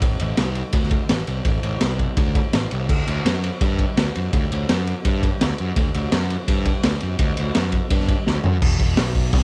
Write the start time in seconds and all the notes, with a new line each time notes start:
0.02 A1, kick, ride
0.20 A1, ride
0.37 C2, snare, ride
0.55 ride
0.73 D2, kick, ride
0.83 snare
0.91 kick, ride
1.09 A1, snare, ride
1.27 C2, ride
1.45 A1, kick, ride
1.63 A1, ride
1.81 C2, snare, ride
1.99 kick, ride
2.17 D2, kick, ride
2.35 kick, ride
2.53 A1, snare, ride
2.71 C2, ride
2.89 D2, kick, crash
3.07 D2, ride
3.25 F#2, snare, ride
3.44 ride
3.61 G2, kick, ride
3.79 kick, ride
3.97 D2, snare, ride
4.15 F#2, ride
4.33 D2, kick, ride
4.52 D2, ride
4.69 F#2, snare, ride
4.87 ride
5.05 G2, kick, ride
5.23 kick, ride
5.41 D2, snare, ride
5.58 F#2, ride
5.76 D2, kick, ride
5.95 D2, ride
6.12 F#2, snare, ride
6.30 ride
6.48 G2, kick, ride
6.65 kick, ride
6.83 D2, snare, ride
7.00 F#2, ride
7.19 D2, kick, ride
7.37 D2, ride
7.55 F#2, snare, ride
7.64 snare
7.72 kick, ride
7.90 G2, kick, ride
8.00 snare
8.08 kick, ride
8.27 D2, snare
8.44 F#2, floor tom
8.62 E1, kick, crash
8.79 kick, open hi-hat
8.97 B1, snare, open hi-hat
9.15 kick, open hi-hat
9.33 C2, kick, open hi-hat